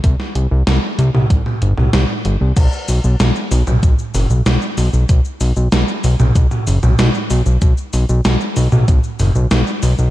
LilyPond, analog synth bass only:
\new Staff \with { instrumentName = "Analog synth bass" } { \clef bass \time 4/4 \key c \lydian \tempo 4 = 95 c,16 r16 c,16 c,16 c,16 r16 c,16 c,16 c,16 r16 g,,16 c,16 c,16 r16 g,,16 c,16 | b,,16 r16 b,,16 b,,16 b,,16 r16 b,,16 b,,16 b,,16 r16 fis,,16 b,,16 b,,16 r16 b,,16 b,,16 | b,,16 r16 b,,16 b,,16 b,,16 r16 b,,16 b,,16 b,,16 r16 fis,,16 b,,16 b,,16 r16 b,,16 b,,16 | b,,16 r16 b,,16 b,,16 b,,16 r16 b,,16 b,,16 b,,16 r16 fis,,16 b,,16 b,,16 r16 b,,16 b,,16 | }